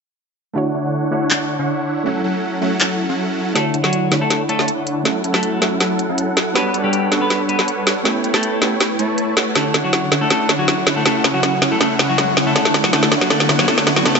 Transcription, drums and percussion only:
1.30 clap medium
2.80 clap loud
3.56 snare soft
3.56 closed hi-hat medium
3.74 closed hi-hat medium
3.84 snare soft
3.93 closed hi-hat medium
4.12 snare soft
4.12 closed hi-hat medium
4.30 snare soft
4.30 closed hi-hat medium
4.49 closed hi-hat medium
4.59 snare soft
4.68 closed hi-hat medium
4.87 closed hi-hat medium
5.05 snare medium
5.05 closed hi-hat medium
5.24 closed hi-hat medium
5.34 snare soft
5.43 closed hi-hat medium
5.62 snare medium
5.62 closed hi-hat medium
5.81 snare medium
5.81 closed hi-hat medium
5.99 closed hi-hat medium
6.18 closed hi-hat medium
6.37 snare medium
6.37 closed hi-hat medium
6.56 snare medium
6.56 closed hi-hat medium
6.74 closed hi-hat medium
6.93 closed hi-hat medium
7.12 snare medium
7.12 closed hi-hat medium
7.30 snare medium
7.30 closed hi-hat medium
7.49 closed hi-hat medium
7.59 snare medium
7.68 closed hi-hat medium
7.87 snare medium
7.87 closed hi-hat medium
8.05 snare medium
8.05 closed hi-hat medium
8.24 closed hi-hat medium
8.34 snare medium
8.43 closed hi-hat medium
8.62 snare medium
8.62 closed hi-hat medium
8.81 snare medium
8.81 closed hi-hat medium
8.99 closed hi-hat medium
9.18 closed hi-hat medium
9.37 snare medium
9.37 closed hi-hat medium
9.56 snare medium
9.56 closed hi-hat medium
9.74 snare medium
9.74 closed hi-hat medium
9.93 snare medium
9.93 closed hi-hat medium
10.12 snare medium
10.12 closed hi-hat medium
10.30 snare medium
10.30 closed hi-hat medium
10.49 snare medium
10.49 closed hi-hat medium
10.68 snare medium
10.68 closed hi-hat medium
10.87 snare medium
10.87 closed hi-hat medium
11.06 snare medium
11.06 closed hi-hat medium
11.24 snare medium
11.24 closed hi-hat medium
11.43 snare medium
11.43 closed hi-hat medium
11.62 snare medium
11.62 closed hi-hat medium
11.81 snare medium
11.81 closed hi-hat medium
11.99 snare medium
11.99 closed hi-hat medium
12.18 snare medium
12.18 closed hi-hat medium
12.37 snare medium
12.37 closed hi-hat medium
12.56 snare medium
12.56 closed hi-hat medium
12.65 snare medium
12.74 snare loud
12.74 closed hi-hat medium
12.84 snare medium
12.93 snare loud
12.93 closed hi-hat medium
13.03 snare medium
13.12 snare loud
13.12 closed hi-hat medium
13.21 snare medium
13.30 snare medium
13.30 closed hi-hat medium
13.40 snare medium
13.49 snare loud
13.49 closed hi-hat medium
13.59 snare medium
13.68 snare loud
13.68 closed hi-hat medium
13.78 snare medium
13.87 snare loud
13.87 closed hi-hat medium
13.96 snare medium
14.05 snare loud
14.05 closed hi-hat medium
14.15 snare medium

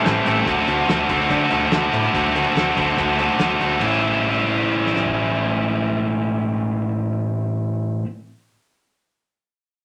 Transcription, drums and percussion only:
0.06 snare loud
0.06 closed hi-hat medium
0.26 closed hi-hat medium
0.46 kick loud
0.46 closed hi-hat medium
0.68 closed hi-hat medium
0.89 snare loud
0.89 closed hi-hat medium
1.09 kick medium
1.09 closed hi-hat medium
1.30 kick medium
1.30 closed hi-hat medium
1.50 closed hi-hat medium
1.72 snare loud
1.72 closed hi-hat medium
1.93 closed hi-hat medium
2.14 kick loud
2.14 closed hi-hat medium
2.36 closed hi-hat medium
2.57 snare medium
2.57 closed hi-hat medium
2.77 kick medium
2.77 closed hi-hat medium
2.97 kick medium
2.97 closed hi-hat medium
3.19 closed hi-hat medium
3.39 snare loud
3.39 closed hi-hat medium
3.61 closed hi-hat medium
3.80 kick medium
3.80 ride medium
4.86 snare medium
4.96 snare medium
5.06 kick medium

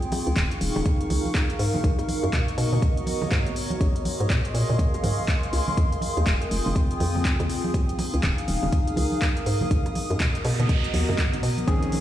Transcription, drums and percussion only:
0.02 closed hi-hat soft
0.12 open hi-hat loud
0.12 high bongo medium
0.12 high conga medium
0.27 closed hi-hat soft
0.36 kick loud
0.36 clap loud
0.36 closed hi-hat medium
0.36 high bongo soft
0.51 closed hi-hat soft
0.61 open hi-hat loud
0.76 high bongo medium
0.76 low conga loud
0.86 kick loud
0.86 closed hi-hat medium
1.01 closed hi-hat medium
1.01 high bongo soft
1.10 open hi-hat loud
1.10 high conga loud
1.10 low conga medium
1.26 high conga medium
1.34 kick loud
1.34 clap loud
1.34 closed hi-hat medium
1.34 high bongo medium
1.50 closed hi-hat soft
1.59 open hi-hat loud
1.59 high bongo soft
1.74 high conga medium
1.74 low conga loud
1.84 kick loud
1.84 closed hi-hat medium
1.99 closed hi-hat soft
1.99 high bongo medium
2.08 open hi-hat loud
2.08 high conga medium
2.23 closed hi-hat soft
2.23 high bongo soft
2.33 kick loud
2.33 clap loud
2.33 closed hi-hat medium
2.48 closed hi-hat soft
2.58 open hi-hat loud
2.58 high bongo medium
2.73 low conga medium
2.82 kick loud
2.82 closed hi-hat medium
2.82 high bongo medium
2.97 closed hi-hat medium
3.06 open hi-hat loud
3.06 high conga medium
3.22 high bongo medium
3.22 high conga medium
3.22 low conga loud
3.32 kick loud
3.32 clap loud
3.32 closed hi-hat medium
3.46 closed hi-hat soft
3.46 high bongo soft
3.46 low conga medium
3.56 open hi-hat loud
3.70 closed hi-hat soft
3.70 high conga loud
3.81 kick loud
3.81 closed hi-hat medium
3.95 closed hi-hat soft
3.95 high bongo soft
4.05 open hi-hat loud
4.05 high conga medium
4.20 closed hi-hat soft
4.30 kick loud
4.30 clap loud
4.30 closed hi-hat medium
4.30 high bongo medium
4.45 closed hi-hat soft
4.54 open hi-hat loud
4.54 high bongo medium
4.69 low conga medium
4.79 kick loud
4.79 closed hi-hat medium
4.94 closed hi-hat soft
4.94 high bongo medium
5.03 open hi-hat loud
5.03 high conga loud
5.03 low conga medium
5.19 high bongo soft
5.19 high conga medium
5.28 kick loud
5.28 clap loud
5.28 closed hi-hat medium
5.43 closed hi-hat soft
5.53 open hi-hat loud
5.53 high bongo medium
5.68 high conga medium
5.68 low conga medium
5.77 kick loud
5.77 closed hi-hat medium
5.77 high bongo soft
5.92 closed hi-hat medium
6.01 open hi-hat medium
6.01 high conga medium
6.17 closed hi-hat soft
6.17 high bongo medium
6.27 kick medium
6.27 clap loud
6.27 closed hi-hat medium
6.41 closed hi-hat medium
6.41 high bongo soft
6.51 open hi-hat loud
6.66 low conga medium
6.75 kick loud
6.75 closed hi-hat medium
6.75 high bongo medium
6.91 closed hi-hat soft
7.00 open hi-hat medium
7.00 high bongo medium
7.00 high conga medium
7.15 high conga medium
7.15 low conga medium
7.25 kick loud
7.25 clap loud
7.25 closed hi-hat medium
7.40 closed hi-hat soft
7.40 high bongo medium
7.40 low conga medium
7.50 open hi-hat loud
7.64 high bongo soft
7.64 high conga medium
7.74 kick loud
7.74 closed hi-hat medium
7.89 closed hi-hat soft
7.99 open hi-hat medium
7.99 high bongo medium
7.99 high conga loud
8.14 closed hi-hat soft
8.23 kick loud
8.23 clap loud
8.23 closed hi-hat medium
8.23 high bongo medium
8.38 closed hi-hat medium
8.48 open hi-hat loud
8.63 high bongo medium
8.63 low conga medium
8.72 kick loud
8.72 closed hi-hat medium
8.87 closed hi-hat medium
8.87 high bongo soft
8.96 open hi-hat loud
8.96 high conga medium
8.96 low conga medium
9.12 high conga medium
9.22 kick loud
9.22 clap loud
9.22 closed hi-hat medium
9.22 high bongo medium
9.37 closed hi-hat medium
9.46 open hi-hat medium
9.46 high bongo soft
9.61 high conga medium
9.61 low conga medium
9.71 kick loud
9.71 closed hi-hat medium
9.86 closed hi-hat medium
9.86 high bongo medium
9.95 open hi-hat medium
9.95 high conga medium
10.11 closed hi-hat soft
10.11 high bongo soft
10.20 kick medium
10.20 clap loud
10.20 closed hi-hat medium
10.35 closed hi-hat medium
10.45 open hi-hat loud
10.45 high bongo medium
10.60 closed hi-hat soft
10.60 low conga medium
10.69 kick loud
10.69 closed hi-hat medium
10.69 high bongo medium
10.84 closed hi-hat medium
10.93 open hi-hat loud
10.93 high conga medium
11.08 high bongo medium
11.08 high conga medium
11.08 low conga medium
11.18 kick loud
11.18 clap loud
11.18 closed hi-hat medium
11.33 closed hi-hat medium
11.33 high bongo soft
11.33 low conga medium
11.43 open hi-hat loud
11.58 closed hi-hat soft
11.58 high conga medium
11.68 kick loud
11.68 closed hi-hat medium
11.82 closed hi-hat medium
11.82 high bongo medium
11.92 open hi-hat loud
11.92 high conga loud

